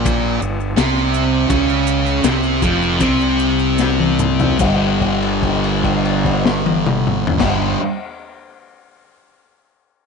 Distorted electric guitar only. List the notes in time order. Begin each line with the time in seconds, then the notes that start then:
Already playing: A#2 A#3
0.40 G2
0.76 C3 C4
1.49 C#3 C#4
2.23 C3 C4
2.62 F2 F3
2.99 C3 C4
4.58 G2 D3 G3
7.38 G2 D3
7.43 G3